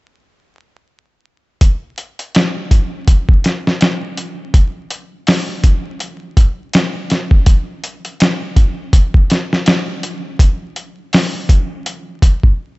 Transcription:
1.61 kick, closed hi-hat
1.98 closed hi-hat
2.19 closed hi-hat
2.35 snare, closed hi-hat
2.71 kick, closed hi-hat
3.08 kick, closed hi-hat
3.29 kick
3.44 snare, closed hi-hat
3.67 snare
3.81 snare, closed hi-hat
4.17 closed hi-hat
4.54 kick, closed hi-hat
4.91 closed hi-hat
5.27 snare, open hi-hat
5.64 kick, closed hi-hat
6.00 closed hi-hat
6.37 kick, closed hi-hat
6.73 snare, closed hi-hat
7.10 snare, closed hi-hat
7.31 kick
7.46 kick, closed hi-hat
7.84 closed hi-hat
8.05 closed hi-hat
8.20 snare, closed hi-hat
8.56 kick, closed hi-hat
8.93 kick, closed hi-hat
9.14 kick
9.30 snare, closed hi-hat
9.53 snare
9.66 snare, closed hi-hat
10.03 closed hi-hat
10.39 kick, closed hi-hat
10.76 closed hi-hat
11.13 snare, open hi-hat
11.49 kick, closed hi-hat
11.86 closed hi-hat
12.22 kick, closed hi-hat
12.43 kick

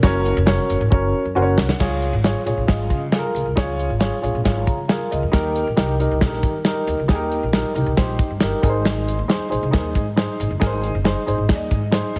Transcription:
0.03 F#1 C#4 F#4 A#4 C#5, kick, snare, closed hi-hat
0.25 closed hi-hat
0.37 F1
0.46 C#4 F#4 A#4 C#5, snare, closed hi-hat
0.70 F#1, closed hi-hat
0.81 G#1
0.90 F#1 C#4 F#4 A#4 C#5, kick
1.14 muted upright bass stroke
1.25 F#2
1.35 F#1 C#4 F#4 A#4 C5 F#5
1.42 C#5
1.58 C2, snare
1.69 snare
1.79 C#2 F4 G#4 C#5, kick, snare, crash
2.02 closed hi-hat
2.13 G#1
2.24 F4 G#4 C#5, snare, closed hi-hat
2.45 A#1 F4 G#4 C#5, closed hi-hat
2.57 A#1
2.67 G#1 F4 G#4 D#5, kick, snare, closed hi-hat
2.90 C#3, kick, closed hi-hat
3.12 F4 G#4 A4, snare, closed hi-hat
3.19 A#4
3.35 C#2, closed hi-hat
3.46 C2
3.56 C#2 D#4 G#4 C#5, kick, snare, closed hi-hat
3.61 F4
3.79 closed hi-hat
3.90 G#1
3.99 F4 G#4 C#5, snare, closed hi-hat
4.21 A#1 F4 G#4 C#5, closed hi-hat
4.35 A#1
4.44 G#1 F4 G#4 C#5, kick, snare, closed hi-hat
4.67 C#3 A#5, kick, closed hi-hat
4.88 F4 G#4 A#4 G#5, snare, closed hi-hat
5.11 C#2 D#5, closed hi-hat
5.23 F2
5.32 D#2 D#4 G4 A#4, kick, snare, closed hi-hat
5.56 closed hi-hat
5.67 A#1
5.76 C2 D#4 G4 A#4, snare, closed hi-hat
6.00 D#4 G4 A#4, closed hi-hat
6.11 C2
6.21 A#1 D#4 G4 A4, kick, snare, closed hi-hat
6.27 A#4
6.33 snare
6.43 D#3, kick, closed hi-hat
6.65 D#4 G4 A#4, snare, closed hi-hat
6.87 D#2, closed hi-hat
6.99 C#2
7.08 D#2 D#4 G4 G#4, kick, snare, closed hi-hat
7.15 A#4
7.32 closed hi-hat
7.43 A#1
7.53 D#4 G4 A#4, snare, closed hi-hat
7.74 C2 D#4 G4 A#4, closed hi-hat
7.86 C2
7.97 A#1 D#4 G4 C5, kick, snare, closed hi-hat
8.19 muted upright bass stroke, kick, closed hi-hat
8.30 G2
8.40 G1 D#4 G4 A#4, snare, closed hi-hat
8.62 G#1 D#4 G#4 A#4, kick, closed hi-hat
8.69 C5
8.85 snare, closed hi-hat
9.08 closed hi-hat
9.19 D#2
9.28 D#4 G#4 C5, snare, closed hi-hat
9.49 A#1 D#4 G#4 C5, closed hi-hat
9.63 C2
9.71 D#2 D#4 G#4 A#4, kick, snare, closed hi-hat
9.78 C5
9.95 G#2, kick, closed hi-hat
10.16 D#4 G#4 C5, snare, closed hi-hat
10.40 G#1, closed hi-hat
10.50 F#1
10.60 G#1 D#4 G#4 A#4, kick, snare, closed hi-hat
10.67 C5
10.83 closed hi-hat
10.95 F#1
11.04 D#4 G#4 C5, snare, closed hi-hat
11.26 G#1 D#4 G#4 C5, closed hi-hat
11.38 G#1
11.48 D#2 D#4 G#4 D5, kick, snare, closed hi-hat
11.55 D#5
11.71 G#2, kick, closed hi-hat
11.91 D#4 G#4 C5, snare, closed hi-hat
12.16 G#1, closed hi-hat

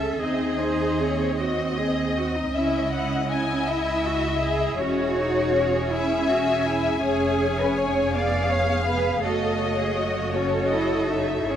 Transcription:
Already playing: C#2 C#4 G#4 A4 E5
0.20 D#2 C4 D#4 G#4 D#5
0.60 D#4 C5
1.01 C4 C#5
1.40 F#4 D#5
1.78 G#4
2.17 F#4
2.36 D#4
2.55 C#2 C#4 E4 E5
2.93 E4 F#5
3.31 E4 G#5
3.68 E4 E5
4.05 F#4
4.41 G#4
4.79 E1 C#4 F#4 G#4 C#5
5.18 D#4
5.54 C#4
5.92 E4 E5 G#5
6.28 F#4
6.66 E4
7.02 F1 C#4 G#4 C#5
7.60 B4
7.78 C#5
8.14 B3 G#4 D5 F5
8.51 C#5
8.88 B4
9.23 F#1 A3 F#4 A4 C#5 D#5
9.79 G#4
9.98 F#4
10.35 C#4 A4 C#5
10.71 E4 D#5
11.08 D#4 E5
11.46 G#1 C#4 E4 G#4 C#5 E5

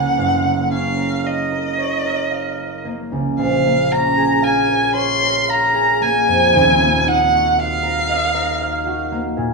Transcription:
Already playing: F#1 C#2 A#3 C#4 A#4 C#5 F#5
0.18 F#1
0.45 A#3
0.71 C#4 F5
0.97 A#4
1.24 D#5 F5
1.52 A#4
1.78 C#5
2.05 A#4
2.31 F5
2.58 A#4
2.85 A#3
3.12 C#2
3.38 A#1 F5
3.66 A#3
3.91 C#4 A#5
4.17 G#4
4.42 F5 G#5
4.69 A#4
4.94 C#5 C6
5.22 A#4
5.49 F5 A#5
5.74 G#4
6.01 A#3 G#5
6.28 F2
6.53 D#1 D#2
6.82 A#3
7.07 D#4 F#5
7.33 F#4
7.58 F5
7.83 A#4
8.09 D#5
8.34 A#4
8.61 F5
8.86 F#4
9.12 A#3
9.37 A#2

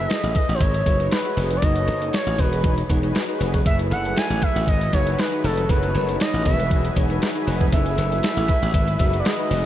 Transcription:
Already playing: E4 G#4 A4 B4 E5
0.09 D#5, snare, closed hi-hat
0.23 A1, closed hi-hat
0.35 D#5, kick, closed hi-hat
0.49 A1, closed hi-hat
0.54 C5
0.60 G#1 C#5, kick, closed hi-hat
0.74 closed hi-hat
0.86 F#1 D#4 F#4 G#4 B4, kick, closed hi-hat
0.99 D#4 F#4 G#4 B4, closed hi-hat
1.11 B4, snare, closed hi-hat
1.24 D#4 F#4 G#4 B4, closed hi-hat
1.37 F1, open hi-hat
1.50 closed hi-hat
1.56 D5
1.62 F#1 D#4 F#4 A4 C#5 D#5, kick, closed hi-hat
1.76 closed hi-hat
1.88 F#1, closed hi-hat
2.02 closed hi-hat
2.13 C#5, snare, closed hi-hat
2.27 A1, closed hi-hat
2.38 E1 D#4 F#4 G#4 B4, kick, closed hi-hat
2.53 closed hi-hat
2.64 kick, closed hi-hat
2.78 closed hi-hat
2.89 E1 D#4 F#4 G#4 B4, kick, closed hi-hat
3.02 D#4 F#4 G#4 B4, closed hi-hat
3.15 snare, closed hi-hat
3.28 D#4 F#4 G#4 B4, closed hi-hat
3.40 F1, closed hi-hat
3.54 kick, closed hi-hat
3.65 F#1 F#3 A3 E4 G#4 A4 B4 E5 G#5, kick, closed hi-hat
3.79 closed hi-hat
3.91 F#1 F#5, closed hi-hat
4.05 closed hi-hat
4.16 G#5, snare, closed hi-hat
4.30 A1, closed hi-hat
4.42 E5, kick, closed hi-hat
4.56 A1, closed hi-hat
4.67 G#1 D#3 G#3 F#4 B4 D#5, kick, closed hi-hat
4.81 closed hi-hat
4.93 F#1 D#4 F#4 G#4 B4 C#5, kick, closed hi-hat
5.06 D#4 F#4 G#4 B4, closed hi-hat
5.13 C#5
5.19 B4, snare, closed hi-hat
5.31 D#4 F#4 G#4 B4, closed hi-hat
5.44 F1 A4, open hi-hat
5.57 closed hi-hat
5.69 F#1 A3 B3 D#4 F#4 A4 B4 C#5, kick, closed hi-hat
5.83 closed hi-hat
5.95 F#1, closed hi-hat
6.09 closed hi-hat
6.20 D#5, snare, closed hi-hat
6.34 A1, closed hi-hat
6.45 E1 D#3 F#3 F#4 G#4 B4 E5 G#5, kick, closed hi-hat
6.60 closed hi-hat
6.71 kick, closed hi-hat
6.85 closed hi-hat
6.96 E1 D#4 F#4 G#4 C#5, kick, closed hi-hat
7.09 D#4 F#4 G#4 B4, closed hi-hat
7.22 snare, closed hi-hat
7.35 D#4 F#4 G#4 B4, closed hi-hat
7.47 F1, open hi-hat
7.61 kick, closed hi-hat
7.72 F#1 F#3 A3 E4 G#4 A4 B4 E5, kick, closed hi-hat
7.86 closed hi-hat
7.98 F#1, closed hi-hat
8.12 closed hi-hat
8.23 snare, closed hi-hat
8.37 A1, closed hi-hat
8.48 kick, closed hi-hat
8.62 A1, closed hi-hat
8.74 G#1 D#3 G#3 F#4, kick, closed hi-hat
8.88 closed hi-hat
8.99 F#1 D#4 F#4 G#4 B4, kick, closed hi-hat
9.13 D#4 F#4 G#4 B4, closed hi-hat
9.19 D5
9.25 D#5, snare, closed hi-hat
9.38 D#4 F#4 G#4 B4, closed hi-hat
9.51 F1, open hi-hat

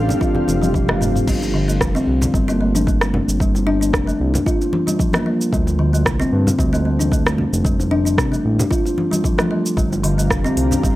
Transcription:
Already playing: A1 A3 C4 G4 A4 F5
0.09 high bongo, low conga, shaker
0.21 F4, kick, high tom, shaker
0.35 high tom, high bongo, low conga
0.48 F1, high conga, shaker
0.62 G3, mid tom, high conga, shaker
0.74 F3, kick, mid tom, shaker
0.89 A3, cross-stick, mid tom, high conga
1.01 A3, mid tom, shaker
1.16 mid tom, shaker
1.27 G1 G3, kick, crash, shaker
1.42 high bongo, shaker
1.54 D3
1.68 A3, shaker
1.81 F1, kick, cross-stick, shaker
1.95 C4, shaker
2.07 C2
2.21 high bongo, low conga, shaker
2.34 G1 G3, kick, shaker
2.48 A#3, high bongo, shaker
2.61 A3
2.75 D4, high conga, shaker
2.87 A3, kick, shaker
3.01 cross-stick, high bongo, shaker
3.14 low conga
3.28 G1, shaker
3.40 G3, kick, shaker
3.55 high bongo, shaker
3.67 D4
3.81 D4, shaker
3.93 F1, kick, cross-stick, shaker
4.07 A3, shaker
4.20 C2
4.34 high bongo, low conga, shaker
4.46 F4, kick, shaker
4.61 high bongo, shaker
4.73 high conga
4.87 G3, high conga, shaker
4.99 F3, kick, shaker
5.13 A#3, cross-stick, high conga, shaker
5.26 A#3
5.41 shaker
5.53 D2 G3, kick, shaker
5.67 high bongo, shaker
5.79 D3
5.93 A3, shaker
6.06 C2, kick, cross-stick, shaker
6.20 C4, shaker
6.32 G2
6.47 high bongo, low conga, shaker
6.58 D2 G3, kick, shaker
6.73 A3, high bongo, shaker
6.85 A3
6.99 D4, high conga, shaker
7.12 A3, kick, shaker
7.26 cross-stick, high bongo, shaker
7.38 low conga
7.53 F1, shaker
7.65 G3, kick, shaker
7.80 high bongo, shaker
7.91 D4
8.05 D4, shaker
8.18 C2, kick, cross-stick, shaker
8.32 A3, high conga, shaker
8.45 A1
8.59 high bongo, low conga, shaker
8.71 F4, kick, shaker
8.86 high bongo, shaker
8.98 high conga
9.11 G3, high conga, shaker
9.24 F3, kick, shaker
9.38 A3, cross-stick, high conga, shaker
9.51 A3
9.66 shaker
9.77 G1 G3 D4 G4 F5 A#5, kick, shaker
9.93 high bongo, shaker
10.03 D3, open hi-hat
10.18 A3, shaker
10.30 F1, kick, cross-stick, shaker
10.44 C4, shaker
10.57 C2, open hi-hat
10.71 high bongo, low conga, shaker
10.83 G1 G3, kick, shaker

